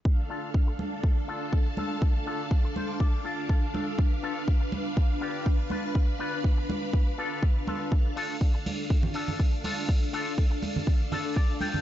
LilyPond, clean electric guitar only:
\new Staff \with { instrumentName = "Clean electric guitar" } { \time 4/4 \key d \dorian \tempo 4 = 122 << { r1 | r4. c''8 d''8 f''8 a''4 | r1 | r1 |
r1 | r2. d''8 g''8 | } \\ { r8 <d' f' a'>8 r4. <d' f' a'>8 r8 <d' f' a'>8 | r8 <d' f' a'>8 r4. <d' f' a'>8 r8 <d' f' a'>8 | r8 <d' f' a'>8 r4. <d' f' g'>8 r8 <d' f' b'>8 | r8 <d' f' b'>8 r4. <d' f' a'>8 r8 <d' f' a'>8 |
r8 <d' f' a'>8 r4. <d' f' a'>8 r8 <d' f' a'>8 | r8 <d' f' a'>8 r4. <d' f' a'>8 r8 <d' f' a'>8 | } >> }